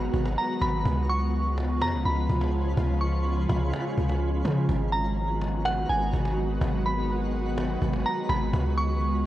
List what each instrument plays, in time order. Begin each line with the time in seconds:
Already playing: ambient pad D#3 F#3 G#3 B3 F#4, synth texture F#4 B4 A#5
0.14 808-style bass G#1, cajon bass
0.26 cajon slap
0.38 synth bell A#5, cajon slap
0.61 808-style bass G#1, synth bell B5, cajon bass, cajon slap
0.85 808-style bass C#2, ambient pad C#3 F3 G#3 B3 F4, synth texture F4 C#5 B5, cajon bass
1.09 synth bell C#6, cajon slap
1.34 cajon slap
1.58 cajon slap
1.81 808-style bass F2, synth bell A#5, cajon slap
1.93 808-style bass C#2
2.05 808-style bass C#2, synth bell B5, cajon slap
2.29 808-style bass C#2, cajon bass
2.41 cajon slap
2.53 cajon slap
2.77 808-style bass C#2, ambient pad C#4, cajon bass
3.01 synth bell C#6, cajon slap
3.49 808-style bass C#2, cajon bass, cajon slap
3.55 cajon slap
3.61 cajon slap
3.67 cajon slap
3.73 cajon slap
3.98 808-style bass C#2, cajon bass
4.09 cajon slap
4.21 cajon slap
4.45 808-style bass C#3, cajon bass, cajon slap
4.69 808-style bass G#1, ambient pad D#3 F#3 B3 F#4, synth texture F#4 B4 A#5, cajon bass
4.93 synth bell A#5, cajon slap
5.18 cajon slap
5.41 cajon slap
5.65 synth bell F#5, cajon slap
5.89 808-style bass G#1, synth bell G#5, cajon slap
6.13 808-style bass G#1, cajon bass
6.25 cajon slap
6.37 cajon slap
6.61 808-style bass G#1, synth texture B5, cajon bass
6.85 synth bell B5, cajon slap
7.10 cajon slap
7.57 cajon slap
7.82 808-style bass G#1, cajon bass
7.93 cajon slap
8.05 synth bell A#5, cajon slap
8.29 808-style bass G#1, synth bell B5, cajon bass, cajon slap
8.53 808-style bass C#2, ambient pad C#3 F3 F4, synth texture F4 C#5, cajon bass
8.77 synth bell C#6, cajon slap
9.02 cajon slap